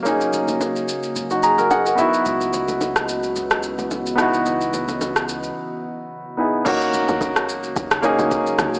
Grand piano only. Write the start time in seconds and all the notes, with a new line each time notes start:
0.03 A#3 C#4 D#4
0.08 G#4
1.31 D#4 F#4
1.43 G#4 A#5
1.58 F#4 A#4
1.71 G#4 F#5
1.86 F#4 A#4
1.95 B3 D#4 E4 E5
2.01 F#4
4.16 B3 D#4 E4
4.21 F#4
6.37 B3 D#4 E4 G#4
6.65 A#3 C#4 D#4 F#4
8.02 A#3 C#4 D#4 G#4